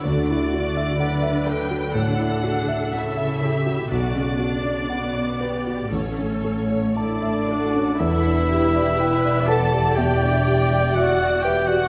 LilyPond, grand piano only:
\new Staff \with { instrumentName = "Grand piano" } { \time 4/4 \key e \dorian \tempo 4 = 61 d,16 e'16 fis'16 e''16 fis''16 e''16 a'16 fis'16 a,16 e'16 fis'16 e''16 fis''16 e''16 a'16 fis'16 | b,,16 cis16 fis'16 d''16 fis''16 d''16 b'16 fis'16 a,,16 cis'16 a'16 cis''16 a''16 e''16 a'16 cis'16 | e,16 d'16 g'16 d''16 g''16 d''16 b'16 g'16 b,16 d'16 g'16 d''16 e''16 d''16 b'16 g'16 | }